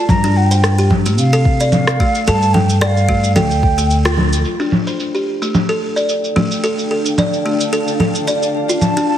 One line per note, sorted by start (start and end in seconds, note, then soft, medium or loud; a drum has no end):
0.09 1.18 G2 medium
0.09 0.38 A#5 loud
0.09 kick loud
0.09 low conga medium
0.09 shaker medium
0.24 0.50 D4 loud
0.24 shaker soft
0.37 0.91 G5 medium
0.51 0.77 C5 medium
0.51 shaker medium
0.64 cross-stick medium
0.64 shaker medium
0.78 0.90 G4 medium
0.78 shaker soft
0.91 kick medium
0.91 low conga medium
1.06 1.32 A3 medium
1.06 shaker medium
1.18 1.97 C3 medium
1.18 1.69 F5 medium
1.18 shaker soft
1.33 1.59 A4 loud
1.33 shaker soft
1.45 kick medium
1.60 1.99 D5 medium
1.60 shaker medium
1.72 2.23 F5 loud
1.72 low conga medium
1.72 shaker medium
1.87 cross-stick medium
1.87 shaker soft
2.00 2.26 A3 loud
2.00 kick loud
2.15 shaker medium
2.27 3.33 G2 loud
2.27 2.53 A4 loud
2.27 2.55 A5 loud
2.27 shaker medium
2.42 shaker soft
2.54 2.63 A4 medium
2.54 2.81 G5 loud
2.54 low conga medium
2.70 shaker medium
2.81 2.96 D5 medium
2.81 2.88 G5 medium
2.81 cross-stick medium
2.81 shaker soft
2.87 3.32 F5 loud
2.97 shaker soft
3.09 3.35 A3 loud
3.09 kick medium
3.24 shaker medium
3.35 4.42 D2 medium
3.35 3.49 A4 loud
3.35 4.14 G5 medium
3.35 low conga medium
3.35 shaker medium
3.51 shaker soft
3.63 kick loud
3.78 3.90 A3 medium
3.78 shaker medium
3.90 shaker medium
4.05 4.17 F4 medium
4.05 cross-stick medium
4.05 shaker soft
4.17 low conga medium
4.33 shaker medium
4.45 9.18 D4 medium
4.45 shaker soft
4.60 4.86 D4 medium
4.60 9.18 D5 medium
4.60 9.18 F5 medium
4.60 shaker soft
4.72 9.18 G5 medium
4.72 low conga medium
4.87 5.13 C5 medium
4.87 shaker medium
5.00 shaker soft
5.15 5.26 G4 medium
5.15 shaker soft
5.32 9.18 A5 medium
5.42 5.68 A3 medium
5.42 shaker medium
5.55 low conga medium
5.55 shaker soft
5.69 5.95 A4 medium
5.69 shaker soft
5.96 6.35 D5 medium
5.96 shaker medium
6.09 shaker soft
6.24 shaker soft
6.36 6.62 A3 medium
6.36 low conga medium
6.51 shaker medium
6.64 6.90 A4 medium
6.64 shaker soft
6.79 shaker soft
6.91 6.99 A4 medium
7.06 shaker medium
7.18 7.32 D5 medium
7.18 low conga medium
7.18 shaker soft
7.33 shaker soft
7.46 7.71 A3 medium
7.61 shaker medium
7.73 7.99 A4 medium
7.73 shaker medium
7.88 shaker soft
8.00 8.09 A4 medium
8.00 low conga medium
8.15 shaker medium
8.27 8.41 D5 medium
8.27 shaker soft
8.43 shaker soft
8.69 8.82 F4 medium
8.69 shaker medium
8.81 9.07 A5 loud
8.81 low conga medium
8.81 shaker medium
8.97 9.18 D4 medium
8.97 shaker soft
9.09 9.18 A5 loud